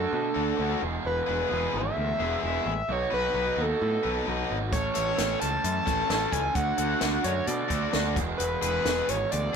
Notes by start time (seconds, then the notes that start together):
Already playing: D3 A3 D4 F#4 A4
0.13 B2
0.34 D2 A3 D4 F#4 A4
0.56 D2 D3 A3 D4 F#4 A4
0.62 F#4
0.80 E1 E2 B2 E3 G#3 B3 G#4
1.05 E1 B4
1.26 E1 G#3 B3 E4 G#4 B4
1.49 E1 E2 B2 E3 G#3 B3 E4 G#4
1.53 G#4
1.74 G#1 E5
1.97 D2
2.19 E1 E2 B2 E3 G#3 B3 E4 G#4
2.42 E1 G#3 B3 E4 G#4 E5
2.66 A1
2.89 B1 B2 F#3 B3 D#4 F#4 C#5
3.10 B1 F#3 B3 D#4 B4
3.34 B1 F#3 B3 D#4 B4
3.57 D#2 F#3 B3 D#4 F#4
3.61 B2 A4
3.82 A2
4.03 B1 F#3 B3 D#4 B4
4.26 B1 B2 F#3 B3 D#4 F#4 B4
4.51 G#1
4.72 A1 A2 E3 A3 C#4 A4 C#5, kick, closed hi-hat
4.94 A1 A3 C#4 E4 A4 C#5, closed hi-hat
5.17 A1 A3 C#4 E4 A4, snare, closed hi-hat
5.39 C#2 E3 A3 C#4 A4 A5, closed hi-hat
5.44 A2
5.63 F#2 A5, closed hi-hat
5.86 A1 A3 C#4 E4 A4, kick, snare, closed hi-hat
6.08 A1 A2 E3 A3 C#4 E4 A4, snare, closed hi-hat
6.32 C#2 G#5, kick, closed hi-hat
6.53 D2 D3 A3 D4 F#4 F#5, kick, closed hi-hat
6.78 D2 A3 D4 F#4 A4, closed hi-hat
7.00 D2 A3 D4 F#4 A4, snare, closed hi-hat
7.23 F#2 D3 A3 D4 F#4 C#5, closed hi-hat
7.47 B2 D5, closed hi-hat
7.68 D2 A3 D4 F#4 A4, kick, closed hi-hat
7.91 D2 D3 A3 D4 F#4 A4, snare, closed hi-hat
7.96 F#4
8.16 E1 E2 B2 E3 G#3 B3, kick, closed hi-hat
8.20 G#4
8.38 E1 B4, closed hi-hat
8.62 E1 G#3 B3 E4 G#4 B4, closed hi-hat
8.84 E1 E2 B2 E3 G#3 B3 E4 G#4, snare, closed hi-hat
8.88 G#3 B3 G#4
9.09 G#1 C#5, closed hi-hat
9.31 D2 D5, closed hi-hat